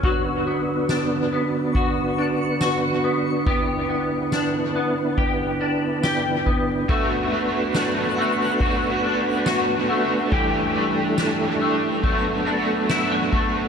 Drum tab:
RD |---xxx-x|-xxxxx--|-x-xxxxx|----xx--|
TB |--x---x-|--x---x-|--x---x-|--x---x-|
SD |--o---o-|--o---o-|--o---o-|--o---o-|
BD |o---o---|o---o--o|o---o---|o---o--o|